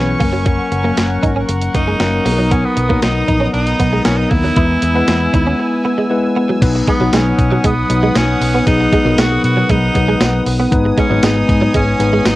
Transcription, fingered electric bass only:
0.00 0.13 B1 medium
0.21 0.57 F#1 medium
0.72 0.90 F#1 loud
0.97 1.16 F#1 loud
1.23 1.41 G#1 medium
1.49 1.67 F#1 loud
1.74 1.93 F#1 medium
2.00 2.18 F#1 medium
2.25 2.62 B1 medium
2.77 2.95 B1 loud
3.03 3.21 B1 medium
3.28 3.47 A#1 medium
3.54 3.72 B1 medium
3.80 3.98 B1 medium
4.05 4.24 B1 medium
4.31 4.49 D#2 medium
4.56 4.75 E2 loud
4.82 5.01 E2 loud
5.08 5.26 E2 loud
5.34 5.52 D#2 medium
6.62 6.80 B1 loud
7.00 7.10 B1 loud
7.13 7.31 B1 medium
7.39 7.57 B2 loud
7.64 7.83 B1 medium
7.90 8.08 B1 loud
8.16 8.34 B1 medium
8.41 8.59 B1 medium
8.67 8.85 B1 loud
9.05 9.14 B1 medium
9.18 9.36 B1 loud
9.44 9.62 B2 loud
9.69 9.88 B1 loud
9.95 10.14 B1 medium
10.20 10.39 B1 loud
10.46 10.65 B1 medium
10.72 10.90 G#1 medium
11.10 11.20 G#1 medium
11.23 11.42 G#1 loud
11.49 11.67 G#2 medium
11.74 11.93 G#1 loud
12.00 12.18 G#1 loud
12.25 12.36 G#1 loud

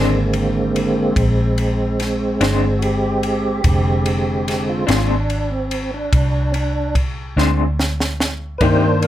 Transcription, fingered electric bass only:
0.00 1.12 G#1 medium
1.17 2.37 A#1 medium
2.40 3.61 G1 medium
3.65 4.85 F1 medium
4.88 6.09 G#1 medium
6.13 7.33 C2 medium
7.37 8.57 D2 medium
8.61 9.07 G2 medium

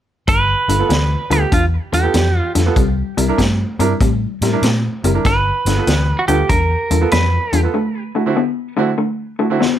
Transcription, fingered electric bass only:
0.28 0.53 G1 medium
0.68 0.81 G1 medium
0.90 1.14 D2 medium
1.30 1.43 D2 medium
1.52 1.77 E2 medium
1.93 2.05 E2 medium
2.14 2.39 F2 medium
2.55 2.68 F2 medium
2.76 3.01 C2 medium
3.17 3.30 C2 medium
3.38 3.63 G2 medium
3.79 3.92 G2 medium
4.01 4.25 A2 medium
4.41 4.54 A2 medium
4.62 4.87 A#2 medium
5.04 5.16 F#1 medium
5.25 5.50 G1 medium
5.65 5.78 G1 medium
5.87 6.12 D2 medium
6.28 6.41 D2 medium
6.49 6.74 E2 medium
6.90 7.03 E2 medium
7.12 7.37 F2 medium
7.53 7.65 E2 medium

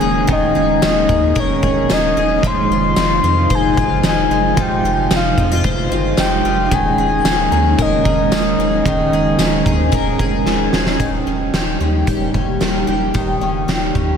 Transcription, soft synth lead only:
0.00 0.26 G#5 loud
0.32 0.81 D#5 loud
0.85 1.41 D#5 loud
1.39 1.95 C#5 loud
1.93 2.48 D#5 loud
2.47 3.56 C6 loud
3.55 4.06 G#5 loud
4.08 4.63 G#5 loud
4.62 5.13 G5 loud
5.16 5.63 F5 loud
6.20 6.76 G5 loud
6.74 7.83 G#5 loud
7.82 10.48 D#5 loud

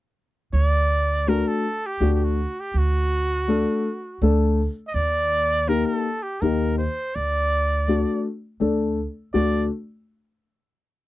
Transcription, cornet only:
0.54 1.30 D5 loud
1.29 1.49 A#4 medium
1.48 1.88 A4 medium
1.86 2.13 G4 medium
2.13 2.25 G4 medium
2.24 2.61 F#4 medium
2.60 2.80 G4 medium
2.78 4.24 F#4 medium
4.88 4.96 D#5 medium
4.94 5.70 D5 loud
5.68 5.87 A#4 medium
5.86 6.24 A4 medium
6.23 6.43 G4 medium
6.41 6.78 A#4 medium
6.78 7.17 C5 medium
7.15 8.25 D5 loud
9.34 9.67 D5 medium

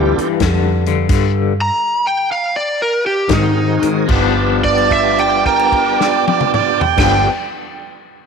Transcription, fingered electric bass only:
0.00 0.15 D2 medium
0.17 muted fingered electric bass stroke soft
0.40 1.07 F2 loud
1.10 1.69 G2 medium
3.29 3.79 G#2 loud
3.83 muted fingered electric bass stroke soft
4.09 6.80 G1 medium
6.98 7.26 G1 medium

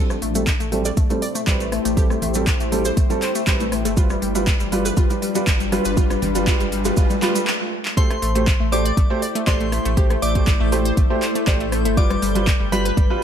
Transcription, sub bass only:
0.22 0.54 A1 loud
0.60 0.92 A1 medium
0.97 1.07 A1 loud
1.47 1.79 A1 loud
1.85 2.17 A1 loud
2.22 2.54 A1 loud
2.60 2.92 A1 medium
2.97 3.07 A1 loud
3.47 3.87 A1 loud
3.85 4.17 G1 loud
4.22 4.54 G1 loud
4.60 4.92 G1 medium
4.97 5.07 G1 loud
5.47 5.79 G1 loud
5.85 6.17 G1 loud
6.22 6.54 G1 loud
6.60 6.92 G1 medium
6.97 7.07 G1 loud
8.22 8.54 A1 loud
8.60 8.92 A1 medium
8.97 9.07 A1 loud
9.47 9.79 A1 loud
9.85 10.17 A1 loud
10.22 10.54 A1 loud
10.61 10.92 A1 loud
10.97 11.07 A1 loud
11.47 11.87 A1 loud
11.85 12.17 G1 loud
12.22 12.54 G1 loud
12.60 12.92 G1 medium
12.97 13.07 G1 loud

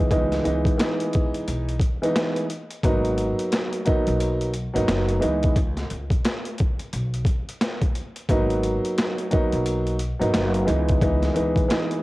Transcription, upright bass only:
0.11 0.40 C#2 loud
0.46 0.63 C#2 medium
1.48 1.77 B1 medium
2.84 3.31 G#1 loud
4.08 4.66 B1 medium
4.76 4.87 G#1 loud
4.89 5.18 F#1 loud
5.23 5.52 C#2 loud
5.56 5.86 C#2 loud
5.91 6.09 C#2 medium
6.93 7.22 B1 medium
8.29 8.76 G#1 loud
9.53 10.11 B1 medium
10.21 10.32 G#1 loud
10.34 10.63 F#1 loud
10.68 10.97 C#2 loud
11.02 11.31 C#2 loud
11.37 11.54 C#2 medium

